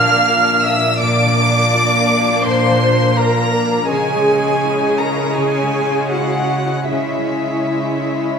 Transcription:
Already playing: cello section A#2, harp A#2 F3 F4 A#4, violin section A#3 D4 F6, viola section F5
0.05 harp D4
0.29 harp F4
0.53 harp A#4
0.64 viola section E5, violin section E6
0.78 harp F4
1.00 cello section A#2, harp A#2, violin section A#3 D4 D6, viola section D5
1.26 harp F3
1.50 harp D4
1.74 harp F4
1.98 harp A#4
2.22 harp F4
2.45 harp A#2, viola section C5, violin section C6
2.70 harp F3
2.94 harp D4
3.16 harp F4, viola section A#4, violin section A#5
3.42 harp A#4
3.66 harp F4
3.89 cello section C#3, harp C#3, violin section G#3 C#4 G#5, viola section G#4
4.15 harp G#3
4.39 harp C#4
4.64 harp E4
4.88 harp G#4
4.99 viola section A#4, violin section A#5
5.13 harp E4
5.36 harp C#3, viola section G#4, violin section G#5
5.62 harp G#3
5.88 harp C#4
6.10 harp E4, viola section F#4, violin section F#5
6.39 harp G#4
6.65 harp E4
6.90 harp C#3, cello section C#3, violin section G#3 C#4 E5, viola section E4
7.18 harp G#3
7.45 harp C#4
7.70 harp E4
7.97 harp G#4
8.23 harp E4

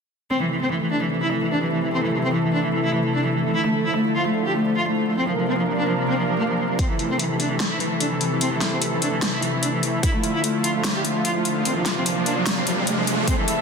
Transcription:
0.30 supersaw synth C3 E3 A3 E4 A4, cello C4
0.41 cello E3
0.51 cello E3
0.61 cello C4
0.71 cello E3
0.81 cello E3
0.91 cello D4
1.02 cello E3
1.11 cello E3
1.22 cello E4
1.32 cello E3
1.42 cello E3
1.52 cello D4
1.63 cello E3
1.72 cello E3
1.83 cello E3
1.92 cello C4
2.03 cello E3
2.13 cello E3
2.23 cello C4
2.33 cello E3
2.44 cello E3
2.53 cello D4
2.64 cello E3
2.74 cello E3
2.84 cello E4
2.94 cello E3
3.05 cello E3
3.14 cello D4
3.25 cello E3
3.34 cello E3
3.45 cello E3
3.55 supersaw synth D3 F3, cello E4
3.65 cello A3
3.75 cello A3
3.85 cello E4
3.95 cello A3
4.06 cello A3
4.15 cello F4
4.26 cello A3
4.36 cello A3
4.46 cello G4
4.56 cello A3
4.67 cello A3
4.76 cello F4
4.87 cello A3
4.97 cello A3
5.07 cello A3
5.17 supersaw synth C3 F3 A#3 D4 A#4, cello C4
5.27 cello F3
5.37 cello F3
5.48 cello C4
5.58 cello F3
5.68 cello F3
5.78 cello D4
5.88 cello F3
5.98 cello F3
6.09 cello C4
6.18 cello F3
6.29 cello F3
6.38 cello A#3
6.49 cello F3
6.59 cello F3
6.69 cello F3
6.79 supersaw synth E3 A3 E4 A4, cello C4, kick, closed hi-hat
6.89 cello E3
6.99 cello E3, closed hi-hat
7.10 cello C4
7.19 cello E3, closed hi-hat
7.30 cello E3
7.40 cello D4, closed hi-hat
7.50 cello E3
7.60 cello E3, snare, closed hi-hat
7.71 cello E4
7.80 cello E3, closed hi-hat
7.91 cello E3
8.00 cello D4, closed hi-hat
8.11 cello E3
8.21 cello E3, closed hi-hat
8.31 cello E3
8.41 cello C4, closed hi-hat
8.52 cello E3
8.61 cello E3, snare, closed hi-hat
8.72 cello C4
8.81 cello E3, closed hi-hat
8.92 cello E3
9.02 cello D4, closed hi-hat
9.12 cello E3
9.22 cello E3, snare, closed hi-hat
9.33 cello E4
9.42 cello E3, closed hi-hat
9.53 cello E3
9.63 cello D4, closed hi-hat
9.73 cello E3
9.83 cello E3, closed hi-hat
9.94 cello E3
10.03 supersaw synth D3 F3 F4, cello E4, kick, closed hi-hat, riser
10.14 cello A3
10.23 cello A3, closed hi-hat
10.34 cello E4
10.44 cello A3, closed hi-hat
10.55 cello A3
10.64 cello F4, closed hi-hat
10.75 cello A3
10.84 cello A3, snare, closed hi-hat
10.95 cello G4
11.04 cello A3, closed hi-hat
11.15 cello A3
11.25 cello F4, closed hi-hat
11.35 cello A3
11.45 cello A3, closed hi-hat
11.56 cello A3
11.65 supersaw synth C3 A#3 D4, cello C4, closed hi-hat
11.76 cello F3
11.86 cello F3, snare, closed hi-hat
11.96 cello C4
12.06 cello F3, closed hi-hat
12.17 cello F3
12.26 cello D4, closed hi-hat
12.37 cello F3
12.46 cello F3, snare, closed hi-hat
12.57 cello C4
12.67 cello F3, closed hi-hat
12.77 cello F3
12.87 cello A3, closed hi-hat
12.98 cello F3
13.07 cello F3, closed hi-hat
13.18 cello F3
13.27 supersaw synth C3 E3 A3 E4 A4, cello C4, string section A4, kick, closed hi-hat, riser
13.38 cello E3
13.46 cello E3, string section E5, closed hi-hat

